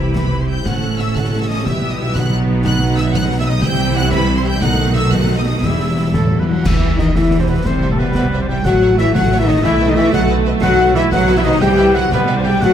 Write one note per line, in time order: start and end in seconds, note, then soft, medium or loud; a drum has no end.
0.00 0.66 C2 medium
0.00 0.66 C3 medium
0.00 0.68 C3 medium
0.00 0.62 G3 medium
0.00 0.48 C4 soft
0.00 0.31 E4 medium
0.00 0.62 E4 medium
0.00 0.15 G4 soft
0.00 0.62 G4 medium
0.00 0.13 B4 medium
0.00 0.14 B5 medium
0.15 0.68 G4 soft
0.15 0.40 B4 medium
0.15 0.40 B5 medium
0.15 concert bass drum medium
0.15 snare medium
0.32 0.99 E4 soft
0.41 0.49 C5 medium
0.41 0.49 C6 medium
0.49 0.67 C4 soft
0.49 0.66 G5 medium
0.49 0.66 G6 medium
0.65 1.64 A1 medium
0.65 1.64 A2 medium
0.65 1.67 A2 medium
0.65 1.64 A3 medium
0.65 1.64 C#4 medium
0.65 2.13 E4 medium
0.65 1.64 A4 medium
0.65 0.98 F#5 medium
0.65 0.99 F#6 medium
0.65 concert bass drum medium
0.65 snare medium
0.82 1.50 C#4 soft
0.99 1.32 E4 medium
0.99 1.16 E5 medium
0.99 1.16 E6 medium
0.99 snare soft
1.16 1.68 A4 medium
1.16 1.41 F#5 medium
1.16 1.41 F#6 medium
1.16 concert bass drum medium
1.16 snare medium
1.33 1.98 E4 medium
1.41 1.50 E5 medium
1.41 1.49 E6 medium
1.48 1.68 C#4 medium
1.48 1.65 D#5 medium
1.48 1.65 D#6 medium
1.65 3.64 B1 medium
1.65 3.63 B2 medium
1.65 2.15 B2 medium
1.65 2.16 G3 medium
1.65 3.64 B3 medium
1.65 2.15 G4 medium
1.65 1.91 E5 medium
1.65 1.90 E6 medium
1.65 concert bass drum medium
1.65 snare medium
1.83 2.31 B3 medium
1.91 1.99 D#5 medium
1.91 1.99 D#6 medium
1.99 2.17 E4 medium
1.99 2.17 G4 medium
1.99 2.15 E5 medium
1.99 2.15 E6 loud
2.14 3.13 B2 medium
2.14 3.64 F#3 medium
2.14 3.64 D#4 medium
2.14 2.33 F#5 medium
2.14 2.31 F#6 loud
2.14 concert bass drum medium
2.14 snare medium
2.32 2.96 B3 medium
2.49 2.80 D#4 medium
2.65 3.65 F#4 medium
2.65 2.96 F#5 medium
2.65 2.96 F#6 loud
2.65 concert bass drum medium
2.65 snare medium
2.65 crash soft
2.82 3.45 D#4 medium
2.97 3.65 B3 medium
2.97 3.14 E5 loud
2.97 3.04 E6 loud
2.97 snare medium
3.14 3.65 B2 medium
3.14 3.39 F#5 loud
3.14 3.23 F#6 loud
3.14 concert bass drum medium
3.14 snare medium
3.31 3.65 F#3 medium
3.39 3.42 E5 medium
3.39 3.47 E6 loud
3.46 3.65 D#4 medium
3.46 3.63 D#5 loud
3.46 3.63 D#6 loud
3.62 4.62 C2 medium
3.62 4.62 C3 medium
3.62 4.63 C3 medium
3.62 4.60 E3 medium
3.62 4.60 G3 medium
3.62 4.60 E4 medium
3.62 4.62 G4 medium
3.62 3.95 G5 loud
3.62 3.96 G6 loud
3.62 concert bass drum medium
3.62 snare medium
3.79 4.11 G3 medium
3.95 4.27 E4 medium
3.95 4.12 F#5 loud
3.95 4.13 F#6 loud
4.12 4.44 G3 medium
4.12 4.36 B4 loud
4.12 4.37 B5 loud
4.12 concert bass drum medium
4.12 snare medium
4.28 4.63 E4 medium
4.36 4.45 C5 medium
4.36 4.45 C6 medium
4.45 4.63 G3 medium
4.45 4.62 G5 loud
4.45 4.62 G6 loud
4.61 5.61 B1 medium
4.61 5.64 B2 medium
4.61 5.61 B2 medium
4.61 5.63 D#3 medium
4.61 5.63 A3 medium
4.61 5.61 D#4 medium
4.61 5.63 A4 medium
4.61 4.95 F#5 loud
4.61 4.94 F#6 loud
4.61 concert bass drum medium
4.61 snare medium
4.78 5.44 A3 medium
4.94 5.27 D#4 medium
4.94 5.12 E5 medium
4.94 5.12 E6 loud
4.94 snare soft
5.11 5.65 F#4 medium
5.11 5.37 F#5 loud
5.11 5.38 F#6 loud
5.11 concert bass drum medium
5.11 snare medium
5.29 5.64 D#4 medium
5.37 5.40 D#5 medium
5.37 5.45 D#6 medium
5.45 5.64 A3 medium
5.45 5.52 D#5 medium
5.45 5.63 D#6 medium
5.62 6.49 E1 medium
5.62 6.11 E2 medium
5.62 6.47 E3 medium
5.62 5.99 E3 medium
5.62 6.47 G3 medium
5.62 6.49 E4 medium
5.62 5.99 G4 medium
5.62 6.13 E5 medium
5.62 6.15 E6 medium
5.62 concert bass drum medium
5.62 snare medium
5.79 6.13 E4 medium
5.96 6.30 G4 medium
6.14 6.21 E2 medium
6.14 6.39 A2 medium
6.14 6.39 A3 medium
6.14 6.48 E4 medium
6.14 6.42 A4 medium
6.14 6.39 A4 medium
6.14 concert bass drum medium
6.14 snare medium
6.31 6.49 F#2 medium
6.31 6.61 G4 medium
6.40 6.49 B2 medium
6.40 6.49 B3 medium
6.40 6.48 B4 medium
6.40 6.44 B4 medium
6.40 6.50 B4 soft
6.48 6.66 G2 medium
6.48 7.58 E3 medium
6.48 6.66 F#3 medium
6.48 6.56 E4 soft
6.48 6.66 F#4 medium
6.48 6.68 F#5 medium
6.48 6.66 F#5 medium
6.48 6.67 F#5 medium
6.53 7.61 B3 medium
6.57 7.55 E4 medium
6.62 6.99 E3 medium
6.62 7.60 G4 soft
6.62 6.73 G4 medium
6.62 concert bass drum medium
6.62 snare medium
6.62 crash medium
6.66 7.10 E2 medium
6.66 7.00 E4 loud
6.66 6.73 B4 medium
6.66 7.00 E5 medium
6.66 6.99 E5 medium
6.66 7.00 E5 medium
6.83 6.89 G4 medium
6.83 6.89 B4 medium
6.98 7.16 D#3 medium
6.98 7.06 D#4 medium
6.98 7.06 G4 medium
6.98 7.06 B4 medium
6.98 7.17 D#5 medium
6.98 7.16 D#5 medium
6.98 7.17 D#5 medium
6.98 snare medium
7.15 7.60 E2 medium
7.15 7.62 E3 medium
7.15 7.41 E3 medium
7.15 7.40 E4 medium
7.15 7.22 G4 medium
7.15 7.22 B4 medium
7.15 7.40 E5 medium
7.15 7.22 E5 medium
7.15 7.25 E5 medium
7.15 concert bass drum medium
7.15 snare medium
7.31 7.38 G4 medium
7.31 7.38 B4 medium
7.40 7.49 C3 medium
7.40 7.49 C4 medium
7.40 7.48 C5 medium
7.40 7.44 C5 medium
7.40 7.49 C5 medium
7.48 7.56 B2 medium
7.48 8.58 C3 medium
7.48 7.65 B3 medium
7.48 7.55 G4 medium
7.48 7.55 B4 medium
7.48 7.67 B4 medium
7.48 7.66 B4 medium
7.52 8.60 C4 medium
7.57 8.56 E4 medium
7.61 7.90 C4 loud
7.61 8.64 G4 medium
7.61 7.90 C5 medium
7.61 7.72 C5 medium
7.61 7.72 E5 medium
7.65 8.10 C2 medium
7.65 7.90 C3 medium
7.65 8.65 G3 medium
7.65 7.91 C5 medium
7.65 7.92 C5 medium
7.65 concert bass drum medium
7.65 snare medium
7.82 7.89 C5 medium
7.82 7.89 E5 medium
7.90 7.99 A2 medium
7.90 8.00 A3 medium
7.90 7.99 A4 medium
7.90 8.01 A4 medium
7.98 8.14 B2 medium
7.98 8.13 B3 medium
7.98 8.15 B4 medium
7.98 8.16 B4 medium
7.98 8.06 C5 medium
7.98 8.06 E5 medium
8.14 8.60 C2 medium
8.14 8.23 B2 medium
8.14 8.26 B3 loud
8.14 8.40 B4 medium
8.14 8.24 B4 medium
8.14 8.41 B4 medium
8.14 8.22 C5 medium
8.14 8.22 E5 medium
8.14 concert bass drum medium
8.14 snare medium
8.33 8.40 C5 medium
8.33 8.40 E5 medium
8.40 8.44 C3 medium
8.40 8.49 C4 medium
8.40 8.45 C5 medium
8.40 8.48 C5 medium
8.40 8.45 C5 medium
8.48 9.57 A2 medium
8.48 8.65 G3 medium
8.48 8.65 G4 loud
8.48 8.56 C5 medium
8.48 8.56 E5 medium
8.48 8.67 G5 medium
8.48 8.65 G5 medium
8.48 8.66 G5 medium
8.53 9.59 C#4 medium
8.57 9.54 E4 medium
8.62 9.09 A1 medium
8.62 8.97 F#3 loud
8.62 11.09 A3 loud
8.62 8.98 F#4 loud
8.62 9.64 A4 medium
8.62 8.98 F#5 loud
8.62 concert bass drum medium
8.62 snare medium
8.62 crash soft
8.66 8.72 C#5 medium
8.66 8.73 E5 medium
8.66 8.99 F#5 medium
8.82 8.88 C#5 medium
8.82 8.89 E5 medium
8.97 9.14 E3 loud
8.97 9.14 E4 loud
8.97 9.06 C#5 medium
8.97 9.14 E5 medium
8.97 9.06 E5 medium
8.97 9.05 E5 medium
8.97 snare medium
9.13 9.59 A1 medium
9.13 9.39 F#3 medium
9.13 9.38 F#4 loud
9.13 9.21 C#5 medium
9.13 9.21 E5 medium
9.13 9.38 F#5 loud
9.13 9.39 F#5 loud
9.13 9.40 F#5 loud
9.13 concert bass drum medium
9.13 snare medium
9.32 9.39 C#5 medium
9.32 9.38 E5 medium
9.38 9.47 E3 medium
9.38 9.47 E4 loud
9.38 9.50 E5 medium
9.38 9.43 E5 medium
9.38 9.48 E5 medium
9.45 9.94 B2 medium
9.45 9.64 D#3 medium
9.45 9.63 D#4 loud
9.45 9.54 C#5 medium
9.45 9.64 D#5 loud
9.45 9.65 D#5 medium
9.45 9.65 D#5 loud
9.45 9.54 E5 medium
9.50 9.98 B3 medium
9.55 10.10 E4 medium
9.60 9.87 E4 loud
9.60 10.12 G4 medium
9.64 10.07 B1 medium
9.64 9.72 E3 loud
9.64 9.71 B4 medium
9.64 9.88 E5 loud
9.64 9.89 E5 loud
9.64 9.76 E5 loud
9.64 9.71 G5 medium
9.64 concert bass drum medium
9.64 snare medium
9.80 9.87 B4 medium
9.80 9.87 G5 medium
9.88 9.92 D#3 loud
9.88 9.97 D#4 loud
9.88 9.97 D#5 loud
9.88 9.97 D#5 medium
9.95 11.54 B2 medium
9.95 10.13 E3 loud
9.95 10.12 E4 loud
9.95 10.03 B4 medium
9.95 10.02 E5 loud
9.95 10.13 E5 loud
9.95 10.03 G5 medium
10.04 11.59 D#4 medium
10.09 11.61 F#4 medium
10.13 10.57 B1 loud
10.13 10.20 F#3 loud
10.13 10.29 F#4 loud
10.13 10.19 B4 medium
10.13 10.20 D#5 medium
10.13 10.29 F#5 loud
10.13 10.21 F#5 loud
10.13 concert bass drum medium
10.13 snare medium
10.29 10.36 B4 medium
10.29 10.36 D#5 medium
10.45 10.52 B4 medium
10.45 10.52 D#5 medium
10.61 11.07 B1 loud
10.61 10.93 F#3 loud
10.61 10.93 F#4 loud
10.61 10.69 B4 medium
10.61 10.69 D#5 loud
10.61 10.93 F#5 loud
10.61 10.97 F#5 loud
10.61 concert bass drum medium
10.61 snare medium
10.61 crash soft
10.79 10.86 B4 medium
10.79 10.86 D#5 medium
10.95 11.02 E3 loud
10.95 11.12 E4 loud
10.95 11.02 B4 medium
10.95 11.02 D#5 medium
10.95 11.12 E5 loud
10.95 11.03 E5 loud
10.95 snare medium
11.11 11.56 B1 loud
11.11 11.36 F#3 loud
11.11 11.62 F#3 loud
11.11 11.37 F#4 loud
11.11 11.18 B4 loud
11.11 11.18 D#5 medium
11.11 11.36 F#5 loud
11.11 11.37 F#5 loud
11.11 concert bass drum medium
11.11 snare medium
11.28 11.34 B4 medium
11.28 11.34 D#5 medium
11.37 11.40 E3 loud
11.37 11.41 E4 loud
11.37 11.45 E5 loud
11.37 11.43 E5 loud
11.44 12.54 C3 medium
11.44 11.61 D#3 loud
11.44 11.62 D#4 loud
11.44 11.52 B4 medium
11.44 11.63 D#5 loud
11.44 11.61 D#5 loud
11.44 11.62 D#5 loud
11.44 11.52 D#5 medium
11.48 12.57 G3 medium
11.53 12.59 E4 medium
11.60 12.06 C2 loud
11.60 12.11 E3 loud
11.60 11.94 G3 loud
11.60 11.67 G4 loud
11.60 11.95 G4 loud
11.60 11.68 E5 medium
11.60 11.95 G5 loud
11.60 11.94 G5 loud
11.60 11.97 G5 loud
11.60 concert bass drum medium
11.60 snare medium
11.77 11.84 G4 medium
11.77 11.84 E5 medium
11.94 12.12 F#3 loud
11.94 12.12 F#4 loud
11.94 12.01 G4 medium
11.94 12.01 E5 medium
11.94 12.00 F#5 loud
11.94 12.11 F#5 loud
11.94 12.12 F#5 loud
12.11 12.56 C2 loud
12.11 12.37 B2 loud
12.11 12.61 G3 loud
12.11 12.37 B3 loud
12.11 12.18 G4 medium
12.11 12.20 B4 loud
12.11 12.38 B4 loud
12.11 12.37 B4 loud
12.11 12.18 E5 medium
12.11 concert bass drum medium
12.11 snare medium
12.28 12.35 G4 medium
12.28 12.35 E5 medium
12.36 12.46 C3 medium
12.36 12.46 C4 medium
12.36 12.45 C5 medium
12.36 12.44 C5 medium
12.36 12.46 C5 medium
12.44 12.73 B2 medium
12.44 12.62 G3 loud
12.44 12.51 G4 medium
12.44 12.63 G4 loud
12.44 12.51 E5 medium
12.44 12.63 G5 loud
12.44 12.62 G5 loud
12.50 12.73 A3 medium
12.54 12.73 D#4 medium
12.59 12.73 B1 loud
12.59 12.73 F#3 loud
12.59 12.73 A3 loud
12.59 12.73 F#4 medium
12.59 12.73 A4 medium
12.59 12.73 D#5 medium
12.59 12.73 F#5 loud
12.59 concert bass drum medium
12.59 snare medium
12.59 crash soft
12.63 12.73 F#4 loud